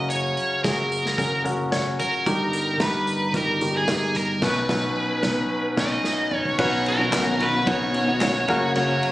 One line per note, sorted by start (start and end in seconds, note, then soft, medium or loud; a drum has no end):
0.00 0.33 F#1 medium
0.00 0.60 C#3 medium
0.00 0.57 C#4 medium
0.00 0.57 F#4 medium
0.00 0.57 A#4 medium
0.10 0.60 C#5 medium
0.10 closed hi-hat medium
0.37 closed hi-hat medium
0.64 1.15 F#1 medium
0.64 1.13 C#4 medium
0.64 1.13 F#4 medium
0.64 1.14 G#4 medium
0.64 1.41 A#4 medium
0.64 kick loud
0.64 snare medium
0.64 closed hi-hat medium
0.92 closed hi-hat medium
1.06 snare soft
1.18 1.95 F#1 medium
1.18 1.42 C#4 medium
1.18 1.43 F#4 medium
1.18 1.43 A#4 medium
1.18 kick medium
1.18 closed hi-hat medium
1.44 1.69 C#4 medium
1.44 1.70 F#4 medium
1.44 1.70 A#4 medium
1.44 closed hi-hat medium
1.44 floor tom medium
1.71 2.21 C#4 medium
1.71 2.21 F#4 medium
1.71 2.21 C#5 medium
1.71 kick medium
1.71 snare medium
1.71 closed hi-hat medium
1.99 2.77 A#4 medium
1.99 closed hi-hat medium
1.99 floor tom soft
2.26 2.77 G1 medium
2.26 3.04 G2 medium
2.26 3.03 G3 medium
2.26 2.75 D#4 medium
2.26 2.76 G4 medium
2.26 2.76 A#4 medium
2.26 kick medium
2.26 closed hi-hat medium
2.53 closed hi-hat medium
2.79 3.31 G1 medium
2.79 3.29 D#4 medium
2.79 3.29 G4 medium
2.79 3.32 B4 medium
2.79 3.30 A#5 medium
2.79 kick medium
2.79 snare medium
2.79 closed hi-hat medium
3.07 closed hi-hat medium
3.34 4.41 G1 medium
3.34 3.59 D#4 medium
3.34 3.59 G4 medium
3.34 3.59 A#4 medium
3.34 3.73 A#4 medium
3.34 kick medium
3.34 closed hi-hat medium
3.61 3.86 D#4 medium
3.61 3.86 G4 medium
3.61 3.86 A#4 medium
3.61 closed hi-hat medium
3.61 floor tom medium
3.77 4.17 G#4 medium
3.88 4.38 D#4 medium
3.88 4.38 G4 medium
3.88 4.38 A#4 medium
3.88 kick medium
3.88 snare medium
3.88 closed hi-hat medium
4.15 4.44 A#4 medium
4.15 closed hi-hat medium
4.15 floor tom medium
4.42 4.61 B1 loud
4.42 4.61 B2 medium
4.42 4.61 F#3 medium
4.42 4.61 C#4 medium
4.42 4.61 D#4 medium
4.42 4.62 B4 medium
4.42 6.02 B4 medium
4.42 kick medium
4.42 snare medium
4.42 crash medium
4.69 4.88 B1 medium
4.69 4.88 B2 medium
4.69 4.88 F#3 medium
4.69 4.88 C#4 medium
4.69 4.88 D#4 medium
4.69 4.88 B4 medium
4.69 kick loud
4.69 snare medium
5.23 5.42 B1 medium
5.23 5.42 C#4 medium
5.23 5.42 D#4 medium
5.23 5.42 B4 medium
5.23 kick medium
5.23 snare medium
5.77 5.96 B1 medium
5.77 5.96 C#4 medium
5.77 5.96 D#4 medium
5.77 6.35 D#5 medium
5.77 kick medium
5.77 snare medium
5.77 crash medium
6.04 snare soft
6.31 6.56 C#5 medium
6.31 mid tom medium
6.45 floor tom medium
6.58 7.09 B1 medium
6.58 7.00 B2 medium
6.58 8.46 D#3 medium
6.58 6.99 F#3 medium
6.58 8.46 B3 medium
6.58 8.46 C#4 medium
6.58 7.08 C#4 medium
6.58 6.99 C#4 medium
6.58 7.08 D#4 medium
6.58 6.99 D#4 loud
6.58 9.12 F#4 medium
6.58 7.08 F#4 medium
6.58 6.98 F#4 loud
6.58 7.08 B4 loud
6.58 6.85 C#5 medium
6.58 kick loud
6.58 crash medium
6.86 7.42 A#4 medium
6.86 ride medium
6.99 7.41 B2 medium
6.99 7.38 F#3 medium
6.99 7.39 C#4 medium
6.99 7.39 D#4 medium
6.99 7.40 F#4 medium
7.12 7.63 B1 medium
7.12 7.62 C#4 medium
7.12 7.62 D#4 medium
7.12 7.62 F#4 medium
7.12 7.62 B4 medium
7.12 kick loud
7.12 snare loud
7.12 clap loud
7.12 ride medium
7.39 7.65 F#3 medium
7.39 7.66 C#4 medium
7.39 7.66 D#4 medium
7.39 7.67 F#4 medium
7.39 7.69 B4 medium
7.39 ride medium
7.66 8.44 B1 medium
7.66 8.07 B2 medium
7.66 8.08 F#3 medium
7.66 8.08 C#4 medium
7.66 8.17 C#4 medium
7.66 8.07 D#4 medium
7.66 8.17 D#4 medium
7.66 8.06 F#4 medium
7.66 8.17 F#4 medium
7.66 8.17 B4 medium
7.66 8.72 C#5 medium
7.66 kick loud
7.66 ride medium
7.94 ride medium
8.07 8.48 C#4 soft
8.07 8.49 D#4 medium
8.07 8.48 F#4 medium
8.21 8.47 C#4 medium
8.21 8.49 D#4 medium
8.21 8.48 F#4 medium
8.21 8.49 C#5 medium
8.21 kick loud
8.21 snare loud
8.21 clap medium
8.21 ride medium
8.48 8.99 F#1 medium
8.48 9.12 C#3 medium
8.48 8.75 F#3 medium
8.48 9.12 F#3 medium
8.48 8.76 A#3 medium
8.48 9.12 A#3 medium
8.48 9.12 C#4 medium
8.48 8.75 C#4 medium
8.48 9.12 F#4 medium
8.48 8.76 F#4 medium
8.48 9.12 A#4 loud
8.48 kick loud
8.48 floor tom medium
8.48 ride medium
8.76 9.12 F#2 medium
8.76 9.12 C#3 medium
8.76 9.12 F#3 medium
8.76 9.12 A#3 medium
8.76 9.12 C#4 loud
8.76 9.12 F#4 loud
8.76 9.12 C#5 medium
8.76 ride medium
9.03 ride medium